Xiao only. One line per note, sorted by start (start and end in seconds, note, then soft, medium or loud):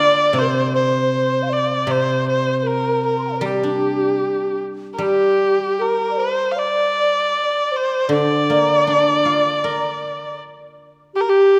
0.00 0.36 D5 medium
0.34 0.43 C5 medium
0.41 0.49 A#4 medium
0.48 0.72 C5 medium
0.74 1.44 C5 medium
1.43 1.51 F5 medium
1.50 1.91 D5 medium
1.90 2.26 C5 medium
2.27 2.65 C5 medium
2.63 3.03 A#4 medium
3.04 3.18 A#4 medium
3.18 3.23 C6 soft
3.24 3.29 G5 soft
3.24 3.26 A#5 soft
3.29 3.35 D5 soft
3.29 3.32 F5 soft
3.35 3.42 A#4 soft
3.35 3.37 C5 soft
3.41 4.60 G4 medium
5.00 5.81 G4 medium
5.80 6.10 A#4 medium
6.11 6.19 D5 soft
6.18 6.58 C5 medium
6.56 7.73 D5 medium
7.72 8.10 C5 medium
8.09 10.37 D5 medium
11.15 11.27 G4 medium
11.28 11.60 G4 medium